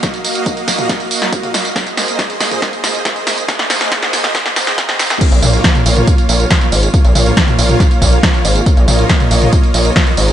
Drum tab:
CC |----------------|----------------|----------------|x---------------|
HH |xxoxxxoxxxoxxxox|xxoxxxoxxxoxxxox|xxoxxxoxxxoxxxox|xxoxxxoxxxoxxxox|
TB |xxxxxxxxxxxxxxxx|xxxxxxxxxxxxxxxx|xxxxxxxxxxxxxxxx|xxxxxxxxxxxxxxxx|
SD |o-----o-o--o--o-|o-o-o-o-o-o-o-o-|oooooooooooooooo|----o-------o---|
T2 |-------o-----o--|-------o--o-----|-------o-----o--|--o--o-o--------|
BD |o---o-o-o---o---|o---o-o-o---o---|o---o-o-o---o---|o---o---o---o---|

CC |----------------|----------------|
HH |xxoxxxoxxxoxxxox|xxoxxxoxxxoxxxox|
TB |xxxxxxxxxxxxxxxx|xxxxxxxxxxxxxxxx|
SD |----o---o---o---|----o-------o---|
T2 |--o--o-o--------|--o--o-o--------|
BD |o---o---o-o-o---|o---o---o---o---|